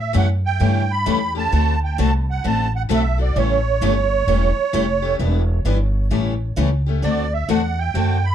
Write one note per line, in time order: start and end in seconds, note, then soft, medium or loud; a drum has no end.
0.00 0.13 A2 medium
0.00 0.16 E5 medium
0.13 0.59 F#2 medium
0.13 0.25 C#3 medium
0.13 0.25 E3 medium
0.13 0.26 G3 medium
0.13 0.26 A3 medium
0.13 0.26 C#4 medium
0.13 0.26 E4 medium
0.13 0.26 G4 medium
0.13 0.26 A4 medium
0.13 0.29 F#5 medium
0.46 0.92 G5 loud
0.60 1.05 G2 medium
0.60 0.82 C#3 medium
0.60 0.82 E3 medium
0.60 0.82 G3 medium
0.60 0.83 A3 medium
0.60 0.83 C#4 medium
0.60 0.82 E4 medium
0.60 0.83 G4 medium
0.60 0.82 A4 medium
0.91 1.33 B5 loud
1.06 1.51 E2 medium
1.06 1.18 C#3 medium
1.06 1.18 E3 medium
1.06 1.18 G3 medium
1.06 1.18 A3 medium
1.06 1.18 C#4 medium
1.06 1.18 E4 medium
1.06 1.18 G4 medium
1.06 1.18 A4 loud
1.35 1.51 A3 soft
1.35 1.52 C#4 medium
1.35 1.51 G4 medium
1.35 1.80 A5 loud
1.52 1.97 D2 medium
1.52 1.74 D3 medium
1.52 1.74 A3 medium
1.52 1.74 C4 medium
1.52 1.75 F#4 medium
1.52 1.75 A4 medium
1.84 2.00 G5 medium
1.98 2.43 C2 medium
1.98 2.10 D3 medium
1.98 2.10 A3 medium
1.98 2.10 C4 medium
1.98 2.10 F#4 medium
1.98 2.10 A4 medium
1.98 2.14 A5 loud
2.30 2.46 F#5 medium
2.44 2.89 A1 medium
2.44 2.66 D3 medium
2.44 2.66 A3 medium
2.44 2.66 C4 medium
2.44 2.66 F#4 medium
2.44 2.66 A4 medium
2.44 2.73 A5 loud
2.76 2.83 F#5 medium
2.89 3.34 B1 medium
2.89 3.01 D3 medium
2.89 3.01 A3 medium
2.89 3.01 C4 medium
2.89 3.01 F#4 medium
2.89 3.02 A4 medium
2.93 3.19 E5 loud
3.18 3.36 C4 soft
3.18 3.35 F#4 medium
3.18 3.35 A4 medium
3.18 3.38 D5 medium
3.36 3.80 A1 medium
3.36 3.57 C#3 medium
3.36 3.58 E3 medium
3.36 3.58 G3 medium
3.36 3.58 A3 medium
3.36 3.58 C#4 medium
3.36 3.58 E4 medium
3.36 3.58 G4 medium
3.36 3.58 A4 medium
3.36 5.16 C#5 loud
3.81 4.26 G1 medium
3.81 3.93 C#3 medium
3.81 3.93 E3 medium
3.81 3.93 G3 medium
3.81 3.94 A3 medium
3.81 3.94 C#4 medium
3.81 3.93 E4 loud
3.81 3.94 G4 loud
3.81 3.93 A4 medium
4.27 4.55 E1 medium
4.27 4.49 C#3 medium
4.27 4.49 E3 medium
4.27 4.49 G3 medium
4.27 4.50 A3 medium
4.27 4.50 C#4 medium
4.27 4.50 E4 medium
4.27 4.50 G4 medium
4.27 4.50 A4 medium
4.57 muted upright bass stroke soft
4.73 5.18 F1 medium
4.73 4.85 C#3 medium
4.73 4.85 E3 medium
4.73 4.85 G3 loud
4.73 4.85 A3 medium
4.73 4.85 C#4 medium
4.73 4.85 E4 medium
4.73 4.85 G4 medium
4.73 4.85 A4 loud
5.02 5.19 A3 soft
5.02 5.19 C#4 soft
5.02 5.18 G4 medium
5.19 5.64 E1 medium
5.19 5.41 E3 medium
5.19 5.41 G3 medium
5.19 5.41 B3 medium
5.19 5.42 D4 medium
5.19 5.41 E4 medium
5.19 5.41 G4 medium
5.19 5.42 B4 medium
5.65 6.09 G1 medium
5.65 5.77 E3 medium
5.65 5.77 G3 medium
5.65 5.77 B3 medium
5.65 5.77 D4 medium
5.65 5.77 E4 medium
5.65 5.77 G4 medium
5.65 5.77 B4 medium
6.11 6.56 A1 medium
6.11 6.32 C#3 medium
6.11 6.33 E3 medium
6.11 6.33 G3 medium
6.11 6.33 A3 medium
6.11 6.33 C#4 medium
6.11 6.33 E4 medium
6.11 6.33 G4 medium
6.11 6.33 A4 medium
6.57 7.01 C#2 medium
6.57 6.68 C#3 medium
6.57 6.69 E3 medium
6.57 6.68 G3 medium
6.57 6.69 A3 medium
6.57 6.69 C#4 medium
6.57 6.69 E4 medium
6.57 6.69 G4 medium
6.57 6.69 A4 medium
6.86 7.03 A3 soft
6.86 7.03 C#4 soft
6.86 7.02 G4 medium
7.02 7.47 D2 medium
7.02 7.25 D3 medium
7.02 7.25 A3 medium
7.02 7.25 C4 medium
7.02 7.25 F#4 medium
7.02 7.26 A4 medium
7.02 7.33 D5 medium
7.34 7.48 E5 medium
7.49 7.93 E2 medium
7.49 7.60 D3 medium
7.49 7.61 A3 medium
7.49 7.61 C4 medium
7.49 7.61 F#4 medium
7.49 7.61 A4 medium
7.49 7.80 F#5 medium
7.79 8.26 G5 loud
7.94 8.35 F#2 medium
7.94 8.16 D3 medium
7.94 8.16 A3 medium
7.94 8.17 C4 medium
7.94 8.16 F#4 medium
7.94 8.17 A4 medium
8.25 8.35 B5 loud